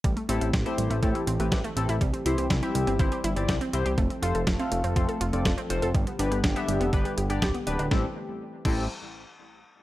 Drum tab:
CC |----------------|----------------|----------------|----------------|
HH |xxxxxxxxxxxxxxxx|xxxxxxxxxxxxxxxx|xxxxxxxxxxxxxxxx|xxxxxxxxxxxxxxxx|
SD |----o-------o---|----o-------o---|----o-------o---|----o-------o---|
BD |o---o---o---o---|o---o---o---o---|o---o---o---o---|o---o---o---o---|

CC |------x---------|
HH |----------------|
SD |o---------------|
BD |o-----o---------|